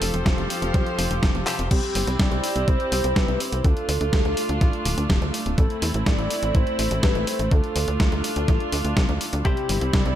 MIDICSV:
0, 0, Header, 1, 6, 480
1, 0, Start_track
1, 0, Key_signature, 0, "major"
1, 0, Tempo, 483871
1, 1696, Time_signature, 4, 2, 24, 8
1, 10072, End_track
2, 0, Start_track
2, 0, Title_t, "Soft synth lead"
2, 0, Program_c, 0, 80
2, 1699, Note_on_c, 0, 67, 106
2, 2144, Note_off_c, 0, 67, 0
2, 2178, Note_on_c, 0, 74, 113
2, 2656, Note_on_c, 0, 72, 109
2, 2671, Note_off_c, 0, 74, 0
2, 3136, Note_on_c, 0, 71, 104
2, 3151, Note_off_c, 0, 72, 0
2, 3376, Note_on_c, 0, 72, 104
2, 3391, Note_off_c, 0, 71, 0
2, 3616, Note_on_c, 0, 69, 104
2, 3631, Note_off_c, 0, 72, 0
2, 4090, Note_off_c, 0, 69, 0
2, 4096, Note_on_c, 0, 69, 95
2, 5256, Note_off_c, 0, 69, 0
2, 5538, Note_on_c, 0, 69, 102
2, 6015, Note_on_c, 0, 74, 115
2, 6030, Note_off_c, 0, 69, 0
2, 6489, Note_off_c, 0, 74, 0
2, 6495, Note_on_c, 0, 72, 109
2, 6942, Note_off_c, 0, 72, 0
2, 6976, Note_on_c, 0, 71, 99
2, 7199, Note_off_c, 0, 71, 0
2, 7217, Note_on_c, 0, 72, 103
2, 7457, Note_on_c, 0, 69, 102
2, 7472, Note_off_c, 0, 72, 0
2, 7931, Note_off_c, 0, 69, 0
2, 7937, Note_on_c, 0, 69, 90
2, 9097, Note_off_c, 0, 69, 0
2, 9381, Note_on_c, 0, 67, 106
2, 9860, Note_on_c, 0, 74, 119
2, 9874, Note_off_c, 0, 67, 0
2, 10072, Note_off_c, 0, 74, 0
2, 10072, End_track
3, 0, Start_track
3, 0, Title_t, "Clean electric guitar"
3, 0, Program_c, 1, 27
3, 0, Note_on_c, 1, 53, 88
3, 0, Note_on_c, 1, 60, 78
3, 0, Note_on_c, 1, 65, 76
3, 0, Note_on_c, 1, 67, 72
3, 0, Note_on_c, 1, 69, 89
3, 1427, Note_off_c, 1, 53, 0
3, 1427, Note_off_c, 1, 60, 0
3, 1427, Note_off_c, 1, 65, 0
3, 1427, Note_off_c, 1, 69, 0
3, 1428, Note_off_c, 1, 67, 0
3, 1450, Note_on_c, 1, 65, 72
3, 1456, Note_on_c, 1, 69, 81
3, 1461, Note_on_c, 1, 67, 68
3, 1469, Note_on_c, 1, 60, 61
3, 1475, Note_on_c, 1, 48, 66
3, 1668, Note_off_c, 1, 48, 0
3, 1668, Note_off_c, 1, 60, 0
3, 1668, Note_off_c, 1, 65, 0
3, 1668, Note_off_c, 1, 67, 0
3, 1668, Note_off_c, 1, 69, 0
3, 9372, Note_on_c, 1, 48, 89
3, 9376, Note_on_c, 1, 60, 78
3, 9381, Note_on_c, 1, 64, 72
3, 9384, Note_on_c, 1, 67, 72
3, 9390, Note_on_c, 1, 72, 79
3, 10072, Note_off_c, 1, 48, 0
3, 10072, Note_off_c, 1, 60, 0
3, 10072, Note_off_c, 1, 64, 0
3, 10072, Note_off_c, 1, 67, 0
3, 10072, Note_off_c, 1, 72, 0
3, 10072, End_track
4, 0, Start_track
4, 0, Title_t, "String section"
4, 0, Program_c, 2, 48
4, 0, Note_on_c, 2, 53, 83
4, 0, Note_on_c, 2, 65, 76
4, 0, Note_on_c, 2, 67, 77
4, 0, Note_on_c, 2, 69, 88
4, 0, Note_on_c, 2, 72, 90
4, 1658, Note_off_c, 2, 69, 0
4, 1677, Note_off_c, 2, 53, 0
4, 1677, Note_off_c, 2, 65, 0
4, 1677, Note_off_c, 2, 67, 0
4, 1678, Note_off_c, 2, 72, 0
4, 1696, Note_on_c, 2, 60, 80
4, 1697, Note_on_c, 2, 64, 78
4, 1697, Note_on_c, 2, 67, 90
4, 3597, Note_off_c, 2, 60, 0
4, 3597, Note_off_c, 2, 64, 0
4, 3597, Note_off_c, 2, 67, 0
4, 3617, Note_on_c, 2, 65, 92
4, 3618, Note_on_c, 2, 57, 84
4, 3618, Note_on_c, 2, 62, 73
4, 5517, Note_off_c, 2, 65, 0
4, 5518, Note_off_c, 2, 62, 0
4, 5537, Note_on_c, 2, 64, 90
4, 5538, Note_on_c, 2, 60, 75
4, 7438, Note_off_c, 2, 60, 0
4, 7438, Note_off_c, 2, 64, 0
4, 7455, Note_on_c, 2, 62, 77
4, 7455, Note_on_c, 2, 65, 89
4, 9338, Note_off_c, 2, 57, 0
4, 9357, Note_off_c, 2, 62, 0
4, 9357, Note_off_c, 2, 65, 0
4, 9375, Note_on_c, 2, 55, 81
4, 9375, Note_on_c, 2, 60, 73
4, 9375, Note_on_c, 2, 64, 93
4, 10072, Note_off_c, 2, 55, 0
4, 10072, Note_off_c, 2, 60, 0
4, 10072, Note_off_c, 2, 64, 0
4, 10072, End_track
5, 0, Start_track
5, 0, Title_t, "Analog synth bass"
5, 0, Program_c, 3, 38
5, 15, Note_on_c, 3, 29, 91
5, 116, Note_off_c, 3, 29, 0
5, 136, Note_on_c, 3, 29, 82
5, 236, Note_off_c, 3, 29, 0
5, 256, Note_on_c, 3, 29, 100
5, 356, Note_off_c, 3, 29, 0
5, 375, Note_on_c, 3, 29, 80
5, 476, Note_off_c, 3, 29, 0
5, 616, Note_on_c, 3, 29, 82
5, 716, Note_off_c, 3, 29, 0
5, 737, Note_on_c, 3, 36, 99
5, 837, Note_off_c, 3, 36, 0
5, 977, Note_on_c, 3, 29, 95
5, 1077, Note_off_c, 3, 29, 0
5, 1097, Note_on_c, 3, 29, 85
5, 1197, Note_off_c, 3, 29, 0
5, 1217, Note_on_c, 3, 29, 99
5, 1317, Note_off_c, 3, 29, 0
5, 1336, Note_on_c, 3, 29, 80
5, 1437, Note_off_c, 3, 29, 0
5, 1578, Note_on_c, 3, 29, 81
5, 1677, Note_off_c, 3, 29, 0
5, 1697, Note_on_c, 3, 36, 103
5, 1797, Note_off_c, 3, 36, 0
5, 1938, Note_on_c, 3, 31, 94
5, 2037, Note_off_c, 3, 31, 0
5, 2057, Note_on_c, 3, 36, 83
5, 2157, Note_off_c, 3, 36, 0
5, 2177, Note_on_c, 3, 36, 100
5, 2277, Note_off_c, 3, 36, 0
5, 2297, Note_on_c, 3, 36, 78
5, 2397, Note_off_c, 3, 36, 0
5, 2537, Note_on_c, 3, 36, 86
5, 2637, Note_off_c, 3, 36, 0
5, 2657, Note_on_c, 3, 36, 101
5, 2757, Note_off_c, 3, 36, 0
5, 2897, Note_on_c, 3, 36, 94
5, 2997, Note_off_c, 3, 36, 0
5, 3017, Note_on_c, 3, 36, 84
5, 3117, Note_off_c, 3, 36, 0
5, 3136, Note_on_c, 3, 36, 101
5, 3236, Note_off_c, 3, 36, 0
5, 3257, Note_on_c, 3, 36, 82
5, 3357, Note_off_c, 3, 36, 0
5, 3497, Note_on_c, 3, 36, 81
5, 3597, Note_off_c, 3, 36, 0
5, 3616, Note_on_c, 3, 38, 103
5, 3716, Note_off_c, 3, 38, 0
5, 3855, Note_on_c, 3, 38, 94
5, 3956, Note_off_c, 3, 38, 0
5, 3976, Note_on_c, 3, 38, 85
5, 4076, Note_off_c, 3, 38, 0
5, 4096, Note_on_c, 3, 38, 105
5, 4196, Note_off_c, 3, 38, 0
5, 4216, Note_on_c, 3, 38, 81
5, 4316, Note_off_c, 3, 38, 0
5, 4457, Note_on_c, 3, 38, 85
5, 4557, Note_off_c, 3, 38, 0
5, 4575, Note_on_c, 3, 33, 101
5, 4676, Note_off_c, 3, 33, 0
5, 4816, Note_on_c, 3, 26, 96
5, 4916, Note_off_c, 3, 26, 0
5, 4935, Note_on_c, 3, 38, 84
5, 5036, Note_off_c, 3, 38, 0
5, 5055, Note_on_c, 3, 26, 102
5, 5156, Note_off_c, 3, 26, 0
5, 5175, Note_on_c, 3, 38, 82
5, 5276, Note_off_c, 3, 38, 0
5, 5416, Note_on_c, 3, 26, 83
5, 5516, Note_off_c, 3, 26, 0
5, 5535, Note_on_c, 3, 33, 104
5, 5636, Note_off_c, 3, 33, 0
5, 5775, Note_on_c, 3, 40, 93
5, 5876, Note_off_c, 3, 40, 0
5, 5896, Note_on_c, 3, 33, 85
5, 5997, Note_off_c, 3, 33, 0
5, 6015, Note_on_c, 3, 33, 104
5, 6116, Note_off_c, 3, 33, 0
5, 6135, Note_on_c, 3, 33, 78
5, 6236, Note_off_c, 3, 33, 0
5, 6376, Note_on_c, 3, 33, 86
5, 6476, Note_off_c, 3, 33, 0
5, 6494, Note_on_c, 3, 33, 101
5, 6596, Note_off_c, 3, 33, 0
5, 6736, Note_on_c, 3, 33, 95
5, 6836, Note_off_c, 3, 33, 0
5, 6856, Note_on_c, 3, 33, 82
5, 6956, Note_off_c, 3, 33, 0
5, 6975, Note_on_c, 3, 33, 105
5, 7076, Note_off_c, 3, 33, 0
5, 7096, Note_on_c, 3, 33, 81
5, 7196, Note_off_c, 3, 33, 0
5, 7335, Note_on_c, 3, 33, 83
5, 7436, Note_off_c, 3, 33, 0
5, 7455, Note_on_c, 3, 38, 108
5, 7556, Note_off_c, 3, 38, 0
5, 7696, Note_on_c, 3, 38, 93
5, 7797, Note_off_c, 3, 38, 0
5, 7817, Note_on_c, 3, 38, 83
5, 7917, Note_off_c, 3, 38, 0
5, 7935, Note_on_c, 3, 38, 104
5, 8036, Note_off_c, 3, 38, 0
5, 8057, Note_on_c, 3, 38, 79
5, 8157, Note_off_c, 3, 38, 0
5, 8297, Note_on_c, 3, 38, 84
5, 8397, Note_off_c, 3, 38, 0
5, 8415, Note_on_c, 3, 33, 101
5, 8516, Note_off_c, 3, 33, 0
5, 8656, Note_on_c, 3, 38, 95
5, 8756, Note_off_c, 3, 38, 0
5, 8775, Note_on_c, 3, 38, 83
5, 8876, Note_off_c, 3, 38, 0
5, 8895, Note_on_c, 3, 36, 105
5, 8996, Note_off_c, 3, 36, 0
5, 9017, Note_on_c, 3, 38, 82
5, 9117, Note_off_c, 3, 38, 0
5, 9256, Note_on_c, 3, 38, 80
5, 9356, Note_off_c, 3, 38, 0
5, 9375, Note_on_c, 3, 36, 102
5, 9476, Note_off_c, 3, 36, 0
5, 9615, Note_on_c, 3, 31, 95
5, 9716, Note_off_c, 3, 31, 0
5, 9735, Note_on_c, 3, 36, 85
5, 9836, Note_off_c, 3, 36, 0
5, 9855, Note_on_c, 3, 36, 104
5, 9956, Note_off_c, 3, 36, 0
5, 9976, Note_on_c, 3, 36, 79
5, 10072, Note_off_c, 3, 36, 0
5, 10072, End_track
6, 0, Start_track
6, 0, Title_t, "Drums"
6, 16, Note_on_c, 9, 46, 113
6, 116, Note_off_c, 9, 46, 0
6, 137, Note_on_c, 9, 42, 51
6, 236, Note_off_c, 9, 42, 0
6, 256, Note_on_c, 9, 36, 111
6, 258, Note_on_c, 9, 38, 113
6, 258, Note_on_c, 9, 42, 52
6, 355, Note_off_c, 9, 36, 0
6, 357, Note_off_c, 9, 38, 0
6, 357, Note_off_c, 9, 42, 0
6, 378, Note_on_c, 9, 42, 27
6, 478, Note_off_c, 9, 42, 0
6, 498, Note_on_c, 9, 46, 95
6, 598, Note_off_c, 9, 46, 0
6, 618, Note_on_c, 9, 42, 52
6, 717, Note_off_c, 9, 42, 0
6, 736, Note_on_c, 9, 36, 116
6, 738, Note_on_c, 9, 38, 35
6, 738, Note_on_c, 9, 42, 51
6, 836, Note_off_c, 9, 36, 0
6, 837, Note_off_c, 9, 38, 0
6, 837, Note_off_c, 9, 42, 0
6, 858, Note_on_c, 9, 42, 26
6, 958, Note_off_c, 9, 42, 0
6, 978, Note_on_c, 9, 46, 112
6, 1077, Note_off_c, 9, 46, 0
6, 1098, Note_on_c, 9, 42, 51
6, 1198, Note_off_c, 9, 42, 0
6, 1217, Note_on_c, 9, 36, 114
6, 1218, Note_on_c, 9, 38, 111
6, 1218, Note_on_c, 9, 42, 54
6, 1316, Note_off_c, 9, 36, 0
6, 1317, Note_off_c, 9, 38, 0
6, 1317, Note_off_c, 9, 42, 0
6, 1338, Note_on_c, 9, 42, 26
6, 1437, Note_off_c, 9, 42, 0
6, 1457, Note_on_c, 9, 39, 92
6, 1457, Note_on_c, 9, 46, 95
6, 1557, Note_off_c, 9, 39, 0
6, 1557, Note_off_c, 9, 46, 0
6, 1577, Note_on_c, 9, 42, 54
6, 1677, Note_off_c, 9, 42, 0
6, 1697, Note_on_c, 9, 36, 115
6, 1698, Note_on_c, 9, 42, 57
6, 1698, Note_on_c, 9, 49, 107
6, 1796, Note_off_c, 9, 36, 0
6, 1797, Note_off_c, 9, 42, 0
6, 1797, Note_off_c, 9, 49, 0
6, 1817, Note_on_c, 9, 42, 28
6, 1917, Note_off_c, 9, 42, 0
6, 1937, Note_on_c, 9, 46, 109
6, 2036, Note_off_c, 9, 46, 0
6, 2058, Note_on_c, 9, 42, 53
6, 2157, Note_off_c, 9, 42, 0
6, 2177, Note_on_c, 9, 36, 121
6, 2177, Note_on_c, 9, 38, 123
6, 2177, Note_on_c, 9, 42, 56
6, 2276, Note_off_c, 9, 36, 0
6, 2277, Note_off_c, 9, 38, 0
6, 2277, Note_off_c, 9, 42, 0
6, 2297, Note_on_c, 9, 42, 29
6, 2396, Note_off_c, 9, 42, 0
6, 2417, Note_on_c, 9, 46, 97
6, 2516, Note_off_c, 9, 46, 0
6, 2537, Note_on_c, 9, 42, 54
6, 2636, Note_off_c, 9, 42, 0
6, 2657, Note_on_c, 9, 36, 124
6, 2658, Note_on_c, 9, 42, 56
6, 2756, Note_off_c, 9, 36, 0
6, 2757, Note_off_c, 9, 42, 0
6, 2777, Note_on_c, 9, 42, 28
6, 2876, Note_off_c, 9, 42, 0
6, 2897, Note_on_c, 9, 46, 111
6, 2996, Note_off_c, 9, 46, 0
6, 3017, Note_on_c, 9, 42, 55
6, 3116, Note_off_c, 9, 42, 0
6, 3136, Note_on_c, 9, 36, 121
6, 3137, Note_on_c, 9, 38, 118
6, 3137, Note_on_c, 9, 42, 54
6, 3235, Note_off_c, 9, 36, 0
6, 3236, Note_off_c, 9, 38, 0
6, 3236, Note_off_c, 9, 42, 0
6, 3257, Note_on_c, 9, 42, 29
6, 3356, Note_off_c, 9, 42, 0
6, 3377, Note_on_c, 9, 46, 94
6, 3476, Note_off_c, 9, 46, 0
6, 3497, Note_on_c, 9, 42, 58
6, 3596, Note_off_c, 9, 42, 0
6, 3616, Note_on_c, 9, 36, 118
6, 3617, Note_on_c, 9, 42, 57
6, 3715, Note_off_c, 9, 36, 0
6, 3716, Note_off_c, 9, 42, 0
6, 3737, Note_on_c, 9, 42, 27
6, 3836, Note_off_c, 9, 42, 0
6, 3856, Note_on_c, 9, 46, 108
6, 3955, Note_off_c, 9, 46, 0
6, 3976, Note_on_c, 9, 42, 54
6, 4075, Note_off_c, 9, 42, 0
6, 4096, Note_on_c, 9, 36, 127
6, 4096, Note_on_c, 9, 38, 127
6, 4096, Note_on_c, 9, 42, 55
6, 4195, Note_off_c, 9, 36, 0
6, 4196, Note_off_c, 9, 38, 0
6, 4196, Note_off_c, 9, 42, 0
6, 4217, Note_on_c, 9, 42, 29
6, 4316, Note_off_c, 9, 42, 0
6, 4336, Note_on_c, 9, 46, 90
6, 4435, Note_off_c, 9, 46, 0
6, 4456, Note_on_c, 9, 42, 57
6, 4555, Note_off_c, 9, 42, 0
6, 4575, Note_on_c, 9, 36, 124
6, 4576, Note_on_c, 9, 38, 37
6, 4576, Note_on_c, 9, 42, 54
6, 4675, Note_off_c, 9, 36, 0
6, 4675, Note_off_c, 9, 38, 0
6, 4675, Note_off_c, 9, 42, 0
6, 4696, Note_on_c, 9, 42, 28
6, 4795, Note_off_c, 9, 42, 0
6, 4816, Note_on_c, 9, 46, 110
6, 4915, Note_off_c, 9, 46, 0
6, 4937, Note_on_c, 9, 42, 56
6, 5037, Note_off_c, 9, 42, 0
6, 5055, Note_on_c, 9, 36, 121
6, 5057, Note_on_c, 9, 38, 124
6, 5057, Note_on_c, 9, 42, 54
6, 5154, Note_off_c, 9, 36, 0
6, 5157, Note_off_c, 9, 38, 0
6, 5157, Note_off_c, 9, 42, 0
6, 5177, Note_on_c, 9, 42, 28
6, 5277, Note_off_c, 9, 42, 0
6, 5297, Note_on_c, 9, 46, 91
6, 5396, Note_off_c, 9, 46, 0
6, 5417, Note_on_c, 9, 42, 56
6, 5516, Note_off_c, 9, 42, 0
6, 5535, Note_on_c, 9, 36, 126
6, 5536, Note_on_c, 9, 42, 55
6, 5634, Note_off_c, 9, 36, 0
6, 5635, Note_off_c, 9, 42, 0
6, 5656, Note_on_c, 9, 42, 27
6, 5756, Note_off_c, 9, 42, 0
6, 5775, Note_on_c, 9, 46, 104
6, 5874, Note_off_c, 9, 46, 0
6, 5896, Note_on_c, 9, 42, 54
6, 5995, Note_off_c, 9, 42, 0
6, 6015, Note_on_c, 9, 36, 127
6, 6016, Note_on_c, 9, 38, 125
6, 6016, Note_on_c, 9, 42, 54
6, 6114, Note_off_c, 9, 36, 0
6, 6115, Note_off_c, 9, 38, 0
6, 6115, Note_off_c, 9, 42, 0
6, 6136, Note_on_c, 9, 42, 28
6, 6235, Note_off_c, 9, 42, 0
6, 6255, Note_on_c, 9, 46, 90
6, 6354, Note_off_c, 9, 46, 0
6, 6375, Note_on_c, 9, 42, 55
6, 6474, Note_off_c, 9, 42, 0
6, 6495, Note_on_c, 9, 36, 127
6, 6495, Note_on_c, 9, 42, 52
6, 6594, Note_off_c, 9, 36, 0
6, 6594, Note_off_c, 9, 42, 0
6, 6615, Note_on_c, 9, 42, 28
6, 6714, Note_off_c, 9, 42, 0
6, 6734, Note_on_c, 9, 46, 105
6, 6834, Note_off_c, 9, 46, 0
6, 6855, Note_on_c, 9, 42, 56
6, 6954, Note_off_c, 9, 42, 0
6, 6974, Note_on_c, 9, 38, 124
6, 6974, Note_on_c, 9, 42, 52
6, 6975, Note_on_c, 9, 36, 127
6, 7073, Note_off_c, 9, 38, 0
6, 7073, Note_off_c, 9, 42, 0
6, 7074, Note_off_c, 9, 36, 0
6, 7095, Note_on_c, 9, 42, 27
6, 7194, Note_off_c, 9, 42, 0
6, 7215, Note_on_c, 9, 46, 88
6, 7314, Note_off_c, 9, 46, 0
6, 7335, Note_on_c, 9, 42, 55
6, 7434, Note_off_c, 9, 42, 0
6, 7454, Note_on_c, 9, 36, 122
6, 7455, Note_on_c, 9, 42, 51
6, 7554, Note_off_c, 9, 36, 0
6, 7554, Note_off_c, 9, 42, 0
6, 7575, Note_on_c, 9, 42, 26
6, 7675, Note_off_c, 9, 42, 0
6, 7694, Note_on_c, 9, 46, 102
6, 7794, Note_off_c, 9, 46, 0
6, 7815, Note_on_c, 9, 42, 52
6, 7914, Note_off_c, 9, 42, 0
6, 7935, Note_on_c, 9, 36, 127
6, 7935, Note_on_c, 9, 38, 127
6, 7935, Note_on_c, 9, 42, 54
6, 8034, Note_off_c, 9, 36, 0
6, 8035, Note_off_c, 9, 38, 0
6, 8035, Note_off_c, 9, 42, 0
6, 8056, Note_on_c, 9, 42, 28
6, 8155, Note_off_c, 9, 42, 0
6, 8175, Note_on_c, 9, 46, 92
6, 8275, Note_off_c, 9, 46, 0
6, 8295, Note_on_c, 9, 42, 53
6, 8394, Note_off_c, 9, 42, 0
6, 8415, Note_on_c, 9, 36, 125
6, 8415, Note_on_c, 9, 38, 39
6, 8415, Note_on_c, 9, 42, 51
6, 8514, Note_off_c, 9, 36, 0
6, 8514, Note_off_c, 9, 38, 0
6, 8514, Note_off_c, 9, 42, 0
6, 8535, Note_on_c, 9, 42, 26
6, 8634, Note_off_c, 9, 42, 0
6, 8655, Note_on_c, 9, 46, 104
6, 8754, Note_off_c, 9, 46, 0
6, 8775, Note_on_c, 9, 42, 54
6, 8874, Note_off_c, 9, 42, 0
6, 8895, Note_on_c, 9, 36, 125
6, 8895, Note_on_c, 9, 38, 118
6, 8895, Note_on_c, 9, 42, 54
6, 8994, Note_off_c, 9, 36, 0
6, 8994, Note_off_c, 9, 38, 0
6, 8994, Note_off_c, 9, 42, 0
6, 9014, Note_on_c, 9, 42, 27
6, 9114, Note_off_c, 9, 42, 0
6, 9135, Note_on_c, 9, 46, 91
6, 9234, Note_off_c, 9, 46, 0
6, 9254, Note_on_c, 9, 42, 55
6, 9354, Note_off_c, 9, 42, 0
6, 9375, Note_on_c, 9, 36, 118
6, 9375, Note_on_c, 9, 42, 50
6, 9474, Note_off_c, 9, 36, 0
6, 9474, Note_off_c, 9, 42, 0
6, 9495, Note_on_c, 9, 42, 26
6, 9594, Note_off_c, 9, 42, 0
6, 9615, Note_on_c, 9, 46, 105
6, 9714, Note_off_c, 9, 46, 0
6, 9735, Note_on_c, 9, 42, 52
6, 9835, Note_off_c, 9, 42, 0
6, 9855, Note_on_c, 9, 36, 121
6, 9855, Note_on_c, 9, 38, 117
6, 9855, Note_on_c, 9, 42, 49
6, 9954, Note_off_c, 9, 36, 0
6, 9954, Note_off_c, 9, 38, 0
6, 9954, Note_off_c, 9, 42, 0
6, 9975, Note_on_c, 9, 42, 27
6, 10072, Note_off_c, 9, 42, 0
6, 10072, End_track
0, 0, End_of_file